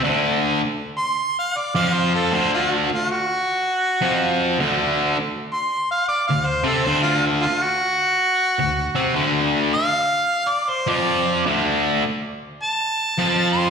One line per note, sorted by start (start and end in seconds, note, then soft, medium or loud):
0.03 0.60 D2 medium
0.03 0.60 D3 loud
0.98 1.35 C6 loud
1.39 1.59 F5 medium
1.57 1.75 D5 medium
1.75 2.31 F2 medium
1.75 2.32 F3 medium
1.75 1.95 F5 loud
1.94 2.12 C5 medium
2.15 2.36 A4 medium
2.32 2.88 D2 medium
2.32 2.89 D3 medium
2.32 2.51 C5 medium
2.54 2.71 F4 medium
2.93 3.09 F4 medium
3.11 4.76 F#4 medium
4.02 4.58 F2 medium
4.02 4.59 F3 loud
4.59 5.16 D2 medium
4.59 5.16 D3 loud
5.53 5.91 C6 loud
5.91 6.08 F5 medium
6.08 6.27 D5 loud
6.27 6.59 D2 medium
6.27 6.48 F5 medium
6.47 6.67 C5 medium
6.63 6.85 C3 medium
6.63 6.86 C4 loud
6.63 6.86 A4 medium
6.85 7.43 D2 medium
6.85 7.44 D3 loud
6.85 7.02 C5 medium
7.02 7.23 F4 medium
7.42 7.64 F4 medium
7.63 9.31 F#4 loud
8.59 8.88 D2 medium
8.95 9.15 C3 medium
8.95 9.15 C4 loud
9.15 9.73 D2 medium
9.15 9.73 D3 loud
9.75 10.50 F5 loud
10.49 10.72 D5 medium
10.70 10.91 C5 medium
10.87 11.44 F2 medium
10.87 11.45 F3 loud
10.87 11.45 D5 medium
11.46 12.03 D2 medium
11.46 12.03 D3 medium
12.63 13.52 A5 loud
13.18 13.70 F2 medium
13.18 13.70 F3 loud
13.53 13.70 C6 medium